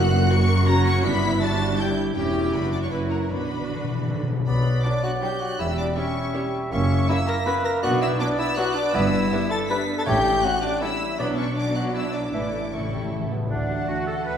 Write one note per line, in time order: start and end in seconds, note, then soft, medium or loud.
0.00 1.02 F#1 loud
0.00 0.44 F#2 loud
0.00 1.02 F#2 loud
0.00 0.11 A#3 loud
0.00 0.28 F#4 loud
0.00 0.66 F#4 loud
0.00 0.29 F#5 loud
0.00 0.29 F#6 loud
0.12 0.66 A#3 loud
0.30 0.66 A#4 loud
0.30 0.68 C#6 loud
0.30 0.67 C#7 loud
0.67 1.04 C#4 loud
0.67 1.03 F#4 loud
0.67 1.04 F#4 loud
0.67 0.86 A#5 loud
0.67 0.85 A#6 loud
0.86 1.04 C#6 loud
0.86 1.04 C#7 loud
1.04 2.16 G1 loud
1.04 2.16 G2 loud
1.04 1.42 B3 loud
1.04 1.23 D4 loud
1.04 1.78 E4 loud
1.04 1.41 B5 loud
1.04 1.42 B6 loud
1.23 1.42 E4 loud
1.41 1.79 D4 loud
1.41 1.79 F#4 medium
1.41 1.79 A5 loud
1.41 1.79 A6 loud
1.79 2.16 D4 loud
1.79 2.16 E4 medium
1.79 2.15 G4 medium
1.79 1.87 G5 loud
1.79 1.97 G6 loud
2.16 2.51 E1 loud
2.16 2.51 E2 medium
2.16 2.51 C#4 medium
2.16 2.90 E4 loud
2.16 2.51 G4 medium
2.16 2.52 G4 loud
2.16 2.51 G5 loud
2.53 2.90 F#1 medium
2.53 2.91 F#2 medium
2.53 2.91 D4 medium
2.53 2.90 F#4 medium
2.53 2.73 B4 loud
2.53 2.72 B5 loud
2.72 2.82 D5 medium
2.72 2.76 D6 loud
2.83 2.86 C#5 medium
2.83 2.92 C#6 medium
2.91 3.29 F#1 medium
2.91 3.30 F#2 medium
2.91 3.29 C#4 medium
2.91 3.30 E4 medium
2.91 3.29 F#4 medium
2.91 3.10 B4 medium
2.91 2.99 B5 medium
3.10 3.29 A#4 medium
3.10 3.18 A#5 medium
3.30 4.28 B1 medium
3.30 3.37 B2 soft
3.30 3.66 B2 medium
3.30 4.25 D4 medium
3.30 4.28 D4 medium
3.30 4.25 F#4 medium
3.30 4.27 B4 medium
3.30 4.25 B5 loud
3.38 3.44 B2 soft
3.46 3.52 B2 soft
3.53 3.59 B2 soft
3.60 3.67 B2 medium
3.68 3.75 B2 medium
3.68 3.77 D3 medium
3.76 3.83 B2 medium
3.84 3.91 B2 medium
3.89 3.99 B2 medium
3.89 4.08 E3 medium
4.00 4.06 B2 medium
4.08 4.14 B2 medium
4.08 4.28 D3 medium
4.15 4.22 B2 medium
4.23 4.30 B2 loud
4.28 4.38 B2 loud
4.28 4.47 C#3 medium
4.39 4.46 B2 loud
4.46 4.78 B1 medium
4.46 4.78 B2 medium
4.46 4.82 F#3 medium
4.46 4.85 B3 medium
4.46 4.60 D4 medium
4.46 4.60 F#4 medium
4.46 4.86 B4 loud
4.46 4.82 D5 medium
4.46 4.82 B5 loud
4.84 4.92 F#3 medium
4.84 5.58 F#3 medium
4.84 5.03 D4 medium
4.84 4.92 D4 medium
4.84 4.92 F#4 medium
4.84 4.92 B4 medium
4.84 5.61 D5 medium
4.84 5.05 D5 loud
4.84 5.03 D6 loud
5.03 5.12 F#4 loud
5.03 5.22 F#5 loud
5.03 5.11 F#6 loud
5.21 5.30 F#3 medium
5.21 5.30 D4 medium
5.21 5.29 F#4 medium
5.21 5.42 G4 loud
5.21 5.29 B4 medium
5.21 5.28 G5 loud
5.21 5.40 G6 medium
5.41 5.58 F#4 loud
5.41 5.47 F#5 loud
5.41 5.59 F#6 loud
5.59 5.90 E1 medium
5.59 5.91 E2 medium
5.59 5.96 G3 medium
5.59 5.73 C#4 medium
5.59 5.68 E4 loud
5.59 5.73 G4 medium
5.59 5.97 E5 medium
5.59 5.66 E5 loud
5.59 5.78 E6 loud
5.78 5.87 D4 medium
5.78 5.97 D5 loud
5.78 5.86 D6 loud
5.96 6.04 G3 medium
5.96 6.73 G3 medium
5.96 6.05 C#4 medium
5.96 6.52 C#4 medium
5.96 6.04 E4 medium
5.96 6.04 G4 medium
5.96 6.52 C#5 medium
5.96 6.71 E5 medium
5.96 6.52 C#6 loud
6.34 6.42 G3 medium
6.34 6.42 C#4 medium
6.34 6.42 E4 medium
6.34 6.42 G4 medium
6.71 7.02 F#1 loud
6.71 7.03 F#2 loud
6.71 6.85 A#3 medium
6.71 7.09 A#3 medium
6.71 7.07 C#4 loud
6.71 6.85 E4 medium
6.71 7.10 C#5 loud
6.71 7.08 E5 medium
6.71 7.06 C#6 loud
7.09 7.17 F#3 medium
7.09 7.82 A#3 medium
7.09 7.17 C#4 medium
7.09 7.17 E4 medium
7.09 7.17 E4 loud
7.09 7.17 A#4 medium
7.09 7.28 E5 loud
7.09 7.82 E5 loud
7.09 7.28 E6 loud
7.27 7.36 A#4 loud
7.27 7.47 A#5 loud
7.27 7.46 A#6 loud
7.46 7.54 F#3 medium
7.46 7.54 C#4 medium
7.46 7.54 E4 medium
7.46 7.54 A#4 medium
7.46 7.64 B4 loud
7.46 7.66 B5 loud
7.46 7.54 B6 loud
7.64 7.82 A#4 loud
7.64 7.83 A#5 loud
7.64 7.72 A#6 loud
7.83 8.14 B1 loud
7.83 8.14 B2 loud
7.83 7.96 B3 loud
7.83 8.19 B3 loud
7.83 7.96 D4 loud
7.83 8.01 F#4 loud
7.83 8.19 D5 medium
7.83 8.01 F#5 loud
7.83 7.91 F#6 loud
8.01 8.21 E4 loud
8.01 8.07 E5 loud
8.01 8.09 E6 loud
8.20 8.29 F#3 loud
8.20 8.93 B3 loud
8.20 8.38 D4 loud
8.20 8.28 D4 medium
8.20 8.29 D4 medium
8.20 8.28 B4 medium
8.20 8.93 D5 loud
8.20 8.40 D5 loud
8.20 8.27 D6 loud
8.38 8.57 E4 loud
8.38 8.57 E5 loud
8.38 8.57 E6 loud
8.56 8.65 F#3 medium
8.56 8.65 D4 medium
8.56 8.66 D4 medium
8.56 8.77 F#4 loud
8.56 8.65 B4 loud
8.56 8.64 F#5 loud
8.56 8.75 F#6 loud
8.75 8.95 D4 loud
8.75 8.96 D5 loud
8.75 8.94 D6 loud
8.94 9.25 G1 loud
8.94 9.26 G2 loud
8.94 9.08 B3 loud
8.94 9.66 B3 medium
8.94 9.65 D4 medium
8.94 9.52 E4 loud
8.94 9.07 D5 loud
8.94 9.50 E5 loud
8.94 9.50 E6 loud
9.32 9.41 G3 medium
9.32 9.41 D4 medium
9.32 9.40 E4 medium
9.32 9.40 B4 medium
9.50 9.69 A4 loud
9.50 9.57 A5 loud
9.50 9.58 A6 loud
9.69 9.78 G3 medium
9.69 10.06 B3 loud
9.69 9.78 D4 medium
9.69 10.06 D4 medium
9.69 9.78 E4 medium
9.69 9.78 B4 medium
9.69 9.83 B4 loud
9.69 9.76 B5 loud
9.69 9.96 B6 loud
9.98 10.02 A4 loud
9.98 10.02 A5 loud
9.98 10.02 A6 loud
10.06 10.37 A1 loud
10.06 10.59 A2 loud
10.06 10.38 A2 loud
10.06 10.19 A3 loud
10.06 10.80 A3 loud
10.06 10.81 C#4 loud
10.06 10.46 G4 loud
10.06 10.19 C#5 medium
10.06 10.46 G5 loud
10.06 10.43 G6 loud
10.43 10.52 G3 medium
10.43 10.52 C#4 medium
10.43 10.52 E4 medium
10.43 10.62 F#4 loud
10.43 10.53 A4 medium
10.43 10.65 F#5 loud
10.43 10.62 F#6 loud
10.62 10.81 D4 loud
10.62 10.84 D5 loud
10.62 10.81 D6 loud
10.81 10.89 G3 medium
10.81 11.00 A3 medium
10.81 10.89 C#4 medium
10.81 11.19 C#4 medium
10.81 11.18 E4 loud
10.81 10.89 E4 medium
10.81 10.90 A4 medium
10.81 11.21 E5 loud
10.81 11.18 E6 loud
11.00 11.19 G3 medium
11.19 12.30 B1 medium
11.19 12.30 B2 loud
11.19 11.54 F#3 medium
11.19 11.32 F#3 loud
11.19 11.56 F#3 medium
11.19 11.28 B3 loud
11.19 11.54 D4 medium
11.19 11.56 D4 medium
11.19 11.40 B4 loud
11.19 11.54 D5 medium
11.19 11.32 D5 medium
11.19 11.26 B5 loud
11.38 11.46 C#4 medium
11.38 11.56 C#5 medium
11.38 11.56 C#6 loud
11.56 12.32 F#3 medium
11.56 11.64 D4 medium
11.56 12.32 D4 medium
11.56 11.77 D5 medium
11.56 12.32 D5 medium
11.56 11.75 D6 loud
11.74 11.95 F#4 medium
11.74 11.94 F#5 medium
11.74 11.83 F#6 loud
11.93 12.15 E4 medium
11.93 12.15 E5 medium
11.93 12.14 E6 loud
12.13 12.32 D4 medium
12.13 12.32 D5 medium
12.13 12.32 D6 medium
12.33 13.31 A1 medium
12.33 12.40 A2 soft
12.33 13.31 A2 medium
12.33 12.72 E3 medium
12.33 12.47 E3 medium
12.33 12.72 A3 medium
12.33 12.74 D4 medium
12.33 12.72 E4 medium
12.33 12.72 A4 medium
12.33 12.74 D5 medium
12.33 12.47 E5 medium
12.33 12.72 D6 medium
12.41 12.48 A2 soft
12.49 12.56 A2 soft
12.57 12.64 A2 soft
12.65 12.72 A2 soft
12.72 12.79 A2 soft
12.72 13.30 E3 medium
12.72 13.30 A3 medium
12.72 12.82 A3 medium
12.72 13.11 C#4 medium
12.72 13.30 E4 medium
12.72 13.30 A4 medium
12.72 13.12 C#5 medium
12.72 13.12 C#6 medium
12.80 12.87 A2 medium
12.88 12.95 A2 medium
12.93 13.03 A2 medium
12.93 13.12 G3 medium
13.04 13.10 A2 medium
13.11 13.18 A2 medium
13.11 13.33 A3 medium
13.19 13.26 A2 medium
13.27 13.34 A2 medium
13.32 13.41 A2 loud
13.32 13.51 B3 medium
13.42 13.49 A2 loud
13.50 13.84 D2 medium
13.50 14.04 D3 medium
13.50 14.38 A3 medium
13.50 13.85 D4 medium
13.50 13.86 D4 medium
13.50 14.38 F#4 medium
13.50 14.38 F#5 medium
13.70 14.06 D4 medium
13.70 14.07 F#5 medium
13.70 14.07 A5 medium
13.88 14.21 D2 medium
13.88 14.06 F#4 medium
13.88 14.07 F#4 medium
14.07 14.38 D4 medium
14.07 14.15 A4 medium
14.07 14.26 A4 medium
14.07 14.38 F#5 medium
14.07 14.38 A5 medium
14.26 14.38 D2 medium
14.26 14.34 B4 medium
14.26 14.38 B4 medium